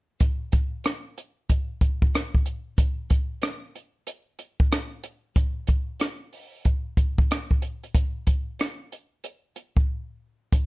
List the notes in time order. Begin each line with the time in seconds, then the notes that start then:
0.20 kick, closed hi-hat
0.52 kick, closed hi-hat
0.84 cross-stick, closed hi-hat
1.18 closed hi-hat
1.49 kick, closed hi-hat
1.81 kick, closed hi-hat
2.02 kick
2.15 cross-stick, closed hi-hat
2.35 kick
2.46 closed hi-hat
2.78 kick, closed hi-hat
3.10 kick, closed hi-hat
3.42 cross-stick, closed hi-hat
3.75 closed hi-hat
4.07 closed hi-hat
4.39 closed hi-hat
4.60 kick
4.72 cross-stick, closed hi-hat
5.04 closed hi-hat
5.36 kick, closed hi-hat
5.67 kick, closed hi-hat
6.00 cross-stick, closed hi-hat
6.33 open hi-hat
6.65 kick, closed hi-hat
6.97 kick, closed hi-hat
7.18 kick
7.31 cross-stick, closed hi-hat
7.51 kick
7.62 closed hi-hat
7.84 closed hi-hat
7.95 kick, closed hi-hat
8.27 kick, closed hi-hat
8.59 cross-stick, closed hi-hat
8.92 closed hi-hat
9.24 closed hi-hat
9.56 closed hi-hat
9.77 kick
10.52 kick, closed hi-hat